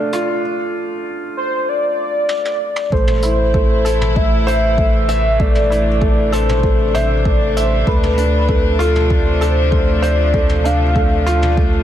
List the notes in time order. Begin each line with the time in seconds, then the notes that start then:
Already playing: D2 C3 F3 A3 D4 F4 D5
0.13 F4, closed hi-hat
1.37 C5
1.69 D5
2.29 high tom
2.45 high tom
2.76 mid tom
2.92 A1 C3 E3 A3 E4 C5, kick
3.08 mid tom
3.22 E4, closed hi-hat
3.54 A3, kick
3.85 A4, closed hi-hat
4.01 mid tom
4.15 A3 E5, kick
4.47 C5, closed hi-hat
4.78 A3, kick
5.08 E5, closed hi-hat
5.40 A3 D4 D5, kick
5.55 mid tom
5.70 E4, closed hi-hat
6.01 A3, kick
6.32 A4 C5, closed hi-hat
6.49 mid tom
6.63 A3, kick
6.94 C5 E5, closed hi-hat, mid tom
7.25 A3 D5, kick
7.56 C5 E5, closed hi-hat
7.86 D2 F3 A3 B4, kick
8.03 mid tom
8.17 D4, closed hi-hat
8.49 A3, kick
8.79 F4 A4, closed hi-hat
8.96 mid tom
9.10 A3 C5, kick
9.41 A4, closed hi-hat
9.72 A3, kick
10.02 C5 D5, closed hi-hat
10.34 A3, kick
10.49 mid tom
10.64 D4 F5, closed hi-hat
10.96 A3, kick
11.26 F4, closed hi-hat
11.42 mid tom
11.57 A3, kick